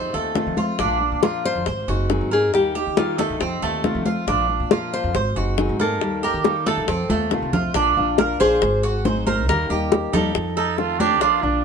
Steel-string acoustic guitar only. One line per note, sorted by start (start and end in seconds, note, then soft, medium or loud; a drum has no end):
0.13 0.35 A3 soft
0.13 0.35 C4 soft
0.13 0.34 F4 soft
0.35 0.56 C3 medium
0.35 0.57 D#3 medium
0.35 0.57 A3 medium
0.35 0.57 C4 medium
0.35 0.55 F4 medium
0.57 0.79 A3 soft
0.57 0.79 C4 soft
0.57 0.78 F4 soft
0.78 1.00 F3 medium
0.78 1.00 A#3 medium
0.78 1.00 D4 medium
0.78 0.99 F4 medium
1.01 1.21 A#3 soft
1.01 1.22 D4 soft
1.22 1.65 F3 medium
1.22 1.66 A#3 medium
1.22 1.66 D4 medium
1.22 1.66 F4 medium
1.66 muted steel-string acoustic guitar stroke medium
1.88 2.09 C4 soft
1.88 2.10 D#4 soft
1.88 2.09 G#4 soft
2.10 2.31 D#3 medium
2.10 2.31 F#3 medium
2.10 2.31 C4 medium
2.10 2.31 D#4 medium
2.10 2.30 G#4 medium
2.31 2.54 C4 soft
2.31 2.53 D#4 soft
2.31 2.53 G#4 soft
2.53 2.74 D#3 medium
2.53 2.75 G3 medium
2.53 2.75 A#3 medium
2.53 2.75 D#4 medium
2.53 2.74 G4 medium
2.75 2.96 A#3 soft
2.75 2.97 D#4 soft
2.75 2.96 G4 soft
2.97 3.40 D#3 medium
2.97 3.40 G3 medium
2.97 3.40 A#3 medium
2.97 3.40 D#4 medium
2.97 3.41 G4 medium
3.40 muted steel-string acoustic guitar stroke medium
3.62 3.83 A3 soft
3.62 3.84 C4 soft
3.62 3.83 F4 soft
3.83 4.05 C3 medium
3.83 4.05 D#3 medium
3.83 4.05 A3 medium
3.83 4.05 C4 medium
3.83 4.04 F4 medium
4.05 4.27 A3 soft
4.05 4.27 C4 soft
4.05 4.27 F4 soft
4.27 4.48 F3 medium
4.27 4.49 A#3 medium
4.27 4.49 D4 medium
4.27 4.48 F4 medium
4.49 4.70 A#3 soft
4.49 4.71 D4 soft
4.49 4.70 F4 medium
4.70 5.13 F3 medium
4.70 5.14 A#3 medium
4.70 5.14 D4 medium
4.70 5.14 F4 medium
5.14 muted steel-string acoustic guitar stroke medium
5.35 5.57 C4 soft
5.35 5.57 D#4 soft
5.35 5.57 G#4 soft
5.57 5.79 D#3 medium
5.57 5.79 F#3 medium
5.57 5.79 C4 medium
5.57 5.79 D#4 medium
5.57 5.78 G#4 medium
5.79 6.01 C4 soft
5.79 6.01 D#4 soft
5.79 6.00 G#4 soft
6.00 6.22 D#3 medium
6.00 6.22 G3 medium
6.00 6.22 A#3 medium
6.00 6.23 D#4 medium
6.00 6.21 G4 medium
6.22 6.44 A#3 soft
6.22 6.44 D#4 soft
6.22 6.44 G4 soft
6.44 6.87 D#3 medium
6.44 6.87 G3 medium
6.44 6.87 A#3 medium
6.44 6.88 D#4 medium
6.44 6.88 G4 medium
6.88 muted steel-string acoustic guitar stroke medium
7.10 7.32 A3 soft
7.10 7.31 C4 soft
7.10 7.31 F4 medium
7.31 7.52 C3 medium
7.31 7.53 D#3 medium
7.31 7.53 A3 medium
7.31 7.53 C4 medium
7.31 7.52 F4 medium
7.53 7.75 A3 soft
7.53 7.75 C4 soft
7.53 7.74 F4 soft
7.75 7.96 F3 medium
7.75 7.96 A#3 medium
7.75 7.96 D4 medium
7.75 7.96 F4 medium
7.97 8.40 A#3 medium
7.97 8.40 D4 medium
7.97 8.39 F4 medium
8.40 8.62 A#3 medium
8.40 8.62 D4 medium
8.40 8.61 F4 medium
8.62 muted steel-string acoustic guitar stroke medium
9.05 9.47 F#3 soft
9.05 9.48 C4 soft
9.05 9.48 D#4 medium
9.05 9.48 G#4 medium
9.48 9.69 D#3 medium
9.48 9.69 G3 medium
9.48 9.69 A#3 medium
9.48 9.69 D#4 medium
9.48 9.68 G4 medium
9.69 10.13 G3 medium
9.69 10.13 A#3 medium
9.69 10.12 D#4 medium
9.69 10.11 G4 medium
10.12 10.34 G3 medium
10.12 10.34 A#3 medium
10.12 10.34 D#4 medium
10.12 10.34 G4 medium
10.34 muted steel-string acoustic guitar stroke medium
10.77 11.20 D#3 soft
10.77 11.21 A3 soft
10.77 11.21 C4 medium
10.77 11.21 F4 medium
11.21 11.42 F3 medium
11.21 11.42 A#3 medium
11.21 11.43 D4 medium
11.21 11.41 F4 medium
11.43 11.64 A#3 medium
11.43 11.64 D4 medium
11.43 11.64 F4 medium